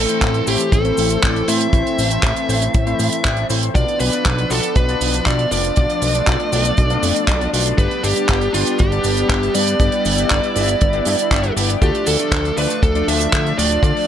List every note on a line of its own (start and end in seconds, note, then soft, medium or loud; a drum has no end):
0.00 3.71 E3 medium
0.00 3.71 A3 medium
0.00 3.71 C4 medium
0.00 0.44 A4 medium
0.09 0.41 A3 medium
0.09 0.41 C4 medium
0.09 0.41 E4 medium
0.09 0.41 C5 medium
0.09 closed hi-hat medium
0.09 cabasa medium
0.21 0.42 A1 loud
0.21 kick loud
0.21 clap loud
0.21 closed hi-hat medium
0.21 cabasa soft
0.34 closed hi-hat soft
0.47 0.57 A1 medium
0.47 0.67 A3 medium
0.47 0.67 C4 medium
0.47 0.67 E4 medium
0.47 0.71 G4 medium
0.47 0.67 C5 loud
0.47 open hi-hat loud
0.47 cabasa medium
0.60 closed hi-hat medium
0.60 cabasa medium
0.72 0.92 A1 loud
0.72 1.20 A4 loud
0.72 kick loud
0.72 closed hi-hat medium
0.72 cabasa soft
0.85 1.20 A3 medium
0.85 1.20 C4 medium
0.85 1.20 E4 medium
0.85 1.20 C5 medium
0.85 closed hi-hat soft
0.97 1.18 A1 medium
0.97 open hi-hat loud
0.97 cabasa medium
1.10 closed hi-hat medium
1.10 cabasa medium
1.23 1.43 A1 medium
1.23 1.43 A3 medium
1.23 1.43 C4 medium
1.23 1.43 E4 medium
1.23 1.49 A4 medium
1.23 1.43 D5 loud
1.23 kick loud
1.23 clap loud
1.23 closed hi-hat medium
1.23 cabasa soft
1.36 closed hi-hat soft
1.48 1.68 A2 medium
1.48 1.70 A3 loud
1.48 1.70 C4 medium
1.48 1.70 E4 medium
1.48 1.70 C5 loud
1.48 3.46 E5 loud
1.48 open hi-hat loud
1.48 cabasa medium
1.60 closed hi-hat medium
1.60 cabasa medium
1.73 1.83 A1 medium
1.73 2.08 A3 medium
1.73 2.08 C4 medium
1.73 2.08 E4 medium
1.73 2.08 C5 loud
1.73 kick loud
1.73 closed hi-hat medium
1.73 cabasa soft
1.87 closed hi-hat soft
1.98 2.19 A1 medium
1.98 open hi-hat loud
1.98 cabasa medium
2.11 2.43 A3 medium
2.11 2.43 C4 medium
2.11 2.43 E4 medium
2.11 2.43 C5 medium
2.11 closed hi-hat medium
2.11 cabasa medium
2.23 2.33 A1 loud
2.23 kick loud
2.23 clap loud
2.23 closed hi-hat medium
2.23 cabasa soft
2.36 closed hi-hat soft
2.49 2.69 A1 loud
2.49 2.69 A3 medium
2.49 2.69 C4 medium
2.49 2.69 E4 medium
2.49 2.69 C5 loud
2.49 open hi-hat loud
2.49 cabasa medium
2.62 closed hi-hat medium
2.62 cabasa medium
2.74 2.94 A1 medium
2.74 kick loud
2.74 closed hi-hat medium
2.74 cabasa soft
2.87 3.22 A3 medium
2.87 3.22 C4 medium
2.87 3.22 E4 medium
2.87 3.22 C5 medium
2.87 closed hi-hat soft
2.99 3.09 A2 loud
2.99 open hi-hat loud
2.99 cabasa medium
3.12 closed hi-hat medium
3.12 cabasa medium
3.25 3.45 A1 medium
3.25 3.44 A3 medium
3.25 3.44 C4 medium
3.25 3.44 E4 medium
3.25 3.44 D5 loud
3.25 kick loud
3.25 clap loud
3.25 closed hi-hat medium
3.25 cabasa soft
3.37 closed hi-hat soft
3.50 3.70 A1 loud
3.50 3.72 A3 loud
3.50 3.72 C4 medium
3.50 3.72 E4 medium
3.50 3.72 C5 loud
3.50 open hi-hat loud
3.50 cabasa medium
3.63 closed hi-hat medium
3.63 cabasa soft
3.75 3.85 B1 loud
3.75 7.74 F3 medium
3.75 4.10 B3 medium
3.75 5.75 B3 medium
3.75 4.10 D4 medium
3.75 9.76 D4 medium
3.75 4.10 F4 medium
3.75 4.10 D5 medium
3.75 4.00 D5 loud
3.75 kick loud
3.75 closed hi-hat medium
3.75 cabasa soft
3.88 closed hi-hat soft
4.00 4.10 B1 loud
4.00 4.52 B4 loud
4.00 open hi-hat loud
4.00 cabasa medium
4.13 4.44 B3 medium
4.13 4.44 D4 medium
4.13 4.44 F4 medium
4.13 4.44 D5 medium
4.13 closed hi-hat medium
4.13 cabasa medium
4.26 4.46 B1 loud
4.26 kick loud
4.26 clap loud
4.26 closed hi-hat medium
4.26 cabasa soft
4.38 closed hi-hat medium
4.50 4.61 B1 medium
4.50 4.70 B3 medium
4.50 4.70 D4 medium
4.50 4.70 F4 medium
4.50 4.74 A4 medium
4.50 4.70 D5 loud
4.50 open hi-hat loud
4.50 cabasa medium
4.63 closed hi-hat medium
4.63 cabasa medium
4.76 4.96 B1 loud
4.76 5.26 B4 loud
4.76 kick loud
4.76 closed hi-hat medium
4.76 cabasa soft
4.89 5.23 B3 medium
4.89 5.23 D4 medium
4.89 5.23 F4 medium
4.89 5.23 D5 medium
4.89 closed hi-hat soft
5.01 5.21 B1 medium
5.01 open hi-hat loud
5.01 cabasa medium
5.13 closed hi-hat medium
5.13 cabasa medium
5.26 5.46 B1 medium
5.26 5.46 B3 loud
5.26 5.46 D4 medium
5.26 5.46 F4 medium
5.26 5.50 D5 loud
5.26 5.46 E5 loud
5.26 kick loud
5.26 clap loud
5.26 closed hi-hat medium
5.26 cabasa soft
5.39 closed hi-hat soft
5.51 5.72 F1 medium
5.51 5.74 B3 loud
5.51 5.74 D4 medium
5.51 5.74 F4 medium
5.51 5.74 D5 loud
5.51 7.49 D5 loud
5.51 open hi-hat loud
5.51 cabasa medium
5.64 closed hi-hat medium
5.64 cabasa medium
5.76 5.87 B1 medium
5.76 7.76 A3 medium
5.76 6.12 B3 medium
5.76 6.12 D4 medium
5.76 6.12 F4 medium
5.76 6.12 D5 loud
5.76 kick loud
5.76 closed hi-hat medium
5.76 cabasa medium
5.90 closed hi-hat soft
6.02 6.22 B1 medium
6.02 open hi-hat loud
6.02 cabasa medium
6.14 6.46 B3 medium
6.14 6.46 D4 medium
6.14 6.46 F4 medium
6.14 6.46 D5 medium
6.14 closed hi-hat medium
6.14 cabasa medium
6.27 6.37 B1 loud
6.27 kick loud
6.27 clap loud
6.27 closed hi-hat medium
6.27 cabasa soft
6.40 closed hi-hat soft
6.52 6.72 B1 loud
6.52 6.72 B3 medium
6.52 6.72 D4 medium
6.52 6.72 F4 medium
6.52 6.72 D5 loud
6.52 open hi-hat loud
6.52 cabasa medium
6.65 closed hi-hat medium
6.65 cabasa medium
6.77 6.98 B1 loud
6.77 kick loud
6.77 closed hi-hat medium
6.77 cabasa soft
6.90 7.25 B3 medium
6.90 7.25 D4 medium
6.90 7.25 F4 medium
6.90 7.25 D5 medium
6.90 closed hi-hat soft
7.03 7.13 F1 loud
7.03 open hi-hat loud
7.03 cabasa medium
7.16 closed hi-hat medium
7.16 cabasa medium
7.28 7.48 B1 medium
7.28 kick loud
7.28 clap loud
7.28 closed hi-hat medium
7.28 cabasa medium
7.41 7.50 B3 medium
7.41 7.50 D4 medium
7.41 7.50 F4 medium
7.41 7.50 D5 medium
7.41 closed hi-hat soft
7.53 7.73 B1 medium
7.53 7.75 B3 medium
7.53 7.75 D4 medium
7.53 7.75 F4 medium
7.53 7.75 D5 loud
7.53 open hi-hat loud
7.53 cabasa medium
7.66 closed hi-hat medium
7.66 cabasa medium
7.78 7.88 G1 loud
7.78 11.78 G3 medium
7.78 11.78 B3 medium
7.78 8.13 B3 medium
7.78 8.13 D4 medium
7.78 8.13 G4 medium
7.78 8.04 B4 loud
7.78 8.13 D5 medium
7.78 kick loud
7.78 closed hi-hat medium
7.78 cabasa medium
7.91 closed hi-hat soft
8.03 8.14 G1 medium
8.03 8.50 G4 medium
8.03 open hi-hat loud
8.03 cabasa medium
8.16 8.48 B3 medium
8.16 8.48 D4 medium
8.16 8.48 G4 medium
8.16 8.48 D5 medium
8.16 closed hi-hat medium
8.16 cabasa medium
8.29 8.49 G1 loud
8.29 kick loud
8.29 clap loud
8.29 closed hi-hat medium
8.29 cabasa soft
8.41 closed hi-hat soft
8.54 8.64 G1 medium
8.54 8.74 B3 medium
8.54 8.74 D4 medium
8.54 8.77 F4 medium
8.54 8.74 G4 medium
8.54 8.74 D5 loud
8.54 open hi-hat loud
8.54 cabasa medium
8.66 closed hi-hat medium
8.66 cabasa medium
8.79 9.00 G1 loud
8.79 9.28 G4 loud
8.79 kick loud
8.79 closed hi-hat medium
8.79 cabasa soft
8.92 9.27 B3 medium
8.92 9.27 D4 medium
8.92 9.27 G4 medium
8.92 9.27 D5 medium
8.92 closed hi-hat soft
9.04 9.25 G1 medium
9.04 open hi-hat loud
9.04 cabasa medium
9.17 closed hi-hat medium
9.17 cabasa medium
9.29 9.50 G1 medium
9.29 9.49 B3 medium
9.29 9.49 D4 medium
9.29 9.53 G4 loud
9.29 9.49 G4 medium
9.29 9.49 E5 loud
9.29 kick loud
9.29 clap loud
9.29 closed hi-hat medium
9.29 cabasa soft
9.43 closed hi-hat soft
9.54 9.75 G2 medium
9.54 9.77 B3 medium
9.54 9.77 D4 medium
9.54 9.77 G4 medium
9.54 11.52 D5 loud
9.54 9.77 D5 loud
9.54 open hi-hat loud
9.54 cabasa medium
9.67 closed hi-hat medium
9.67 cabasa medium
9.80 9.90 G1 medium
9.80 10.15 B3 medium
9.80 10.15 D4 medium
9.80 11.80 E4 medium
9.80 10.15 G4 medium
9.80 10.15 D5 medium
9.80 kick loud
9.80 closed hi-hat medium
9.80 cabasa medium
9.92 closed hi-hat soft
10.05 10.25 G1 medium
10.05 open hi-hat loud
10.05 cabasa medium
10.18 10.49 B3 medium
10.18 10.49 D4 medium
10.18 10.49 G4 medium
10.18 10.49 D5 medium
10.18 closed hi-hat medium
10.18 cabasa medium
10.30 10.41 G1 medium
10.30 kick loud
10.30 clap loud
10.30 closed hi-hat medium
10.30 cabasa medium
10.44 closed hi-hat soft
10.56 10.76 G1 loud
10.56 10.75 B3 medium
10.56 10.75 D4 medium
10.56 10.75 G4 medium
10.56 10.75 D5 loud
10.56 open hi-hat loud
10.56 cabasa medium
10.68 closed hi-hat medium
10.68 cabasa medium
10.81 11.01 G1 medium
10.81 kick loud
10.81 closed hi-hat medium
10.81 cabasa medium
10.93 11.28 B3 medium
10.93 11.28 D4 medium
10.93 11.28 G4 medium
10.93 11.28 D5 medium
10.93 closed hi-hat soft
11.05 11.16 G2 loud
11.05 open hi-hat loud
11.05 cabasa medium
11.18 closed hi-hat medium
11.18 cabasa medium
11.31 11.51 G1 medium
11.31 11.51 B3 medium
11.31 11.51 D4 medium
11.31 11.51 G4 medium
11.31 11.51 E5 loud
11.31 kick loud
11.31 clap loud
11.31 closed hi-hat medium
11.31 cabasa medium
11.44 closed hi-hat soft
11.56 11.77 G1 medium
11.56 11.79 B3 loud
11.56 11.79 D4 medium
11.56 11.79 G4 medium
11.56 11.79 D5 loud
11.56 open hi-hat loud
11.56 cabasa medium
11.69 closed hi-hat medium
11.69 cabasa medium
11.82 11.92 D2 loud
11.82 14.07 F3 medium
11.82 14.07 A3 medium
11.82 12.17 A3 medium
11.82 14.07 D4 medium
11.82 12.17 D4 medium
11.82 12.17 F4 medium
11.82 12.07 G4 medium
11.82 12.17 D5 medium
11.82 kick loud
11.82 closed hi-hat medium
11.82 cabasa soft
11.95 closed hi-hat soft
12.06 12.17 D2 medium
12.06 12.57 A4 medium
12.06 open hi-hat loud
12.06 cabasa medium
12.19 12.51 A3 medium
12.19 12.51 D4 medium
12.19 12.51 F4 medium
12.19 12.51 D5 medium
12.19 closed hi-hat medium
12.19 cabasa medium
12.32 12.52 D2 loud
12.32 kick loud
12.32 clap loud
12.32 closed hi-hat medium
12.32 cabasa soft
12.45 closed hi-hat soft
12.57 12.67 D2 medium
12.57 12.77 A3 medium
12.57 12.77 D4 medium
12.57 12.77 F4 medium
12.57 12.83 B4 medium
12.57 12.77 D5 loud
12.57 open hi-hat loud
12.57 cabasa medium
12.70 closed hi-hat medium
12.70 cabasa medium
12.83 13.03 D2 medium
12.83 13.06 A4 loud
12.83 kick loud
12.83 closed hi-hat medium
12.83 cabasa soft
12.95 13.30 A3 medium
12.95 13.30 D4 medium
12.95 13.30 F4 medium
12.95 13.30 D5 medium
12.95 closed hi-hat soft
13.08 13.28 D2 medium
13.08 13.58 E5 loud
13.08 open hi-hat loud
13.08 cabasa medium
13.21 closed hi-hat medium
13.21 cabasa medium
13.33 13.53 D2 medium
13.33 13.53 A3 loud
13.33 13.53 D4 medium
13.33 13.53 F4 medium
13.33 13.53 E5 loud
13.33 kick loud
13.33 clap loud
13.33 closed hi-hat medium
13.33 cabasa medium
13.47 closed hi-hat soft
13.58 13.78 D1 medium
13.58 13.80 A3 loud
13.58 13.80 D4 medium
13.58 13.80 F4 medium
13.58 13.80 D5 loud
13.58 13.83 D5 loud
13.58 open hi-hat loud
13.58 cabasa medium
13.70 closed hi-hat medium
13.70 cabasa medium
13.83 13.93 D2 medium
13.83 14.07 A3 medium
13.83 14.07 D4 medium
13.83 14.07 F4 medium
13.83 14.07 D5 medium
13.83 14.07 D5 loud
13.83 kick loud
13.83 closed hi-hat medium
13.83 cabasa soft
13.97 open hi-hat medium